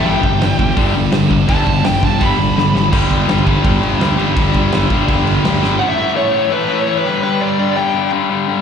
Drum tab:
CC |--------|--------|xxxxxxxx|xxxxxxx-|
HH |--o-o-o-|o-o-o---|--------|--------|
SD |--o---o-|--o---oo|--o---o-|--o---oo|
BD |-o-oo--o|oo-oo---|oo-oo---|oo-oo---|

CC |--------|--------|
HH |--------|--------|
SD |--------|--------|
BD |--------|--------|